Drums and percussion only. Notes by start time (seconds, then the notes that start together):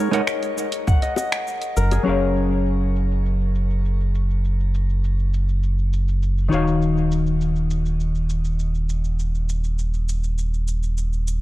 0.13 closed hi-hat, shaker
0.27 finger snap, shaker
0.43 closed hi-hat, shaker
0.58 shaker
0.72 closed hi-hat, shaker
0.87 kick, shaker
1.02 closed hi-hat, shaker
1.16 high bongo, shaker
1.32 finger snap, closed hi-hat, shaker
1.47 shaker
1.62 closed hi-hat, shaker
1.77 shaker
1.91 closed hi-hat, high bongo, shaker
2.22 shaker
2.36 shaker
2.52 shaker
2.66 shaker
2.81 shaker
2.96 shaker
3.11 shaker
3.26 shaker
3.41 shaker
3.55 shaker
3.71 shaker
3.85 shaker
4.01 shaker
4.15 shaker
4.30 shaker
4.45 shaker
4.60 shaker
4.74 shaker
4.90 shaker
5.04 shaker
5.19 shaker
5.34 shaker
5.49 shaker
5.63 shaker
5.79 shaker
5.93 shaker
6.08 shaker
6.23 shaker
6.38 shaker
6.52 shaker
6.68 shaker
6.82 shaker
6.97 shaker
7.12 shaker
7.27 shaker
7.41 shaker
7.56 shaker
7.70 shaker
7.86 shaker
8.00 shaker
8.15 shaker
8.30 shaker
8.45 shaker
8.59 shaker
8.75 shaker
8.89 shaker
9.04 shaker
9.19 shaker
9.35 shaker
9.49 shaker
9.64 shaker
9.79 shaker
9.94 shaker
10.09 shaker
10.24 shaker
10.38 shaker
10.54 shaker
10.68 shaker
10.83 shaker
10.98 shaker
11.13 shaker
11.28 shaker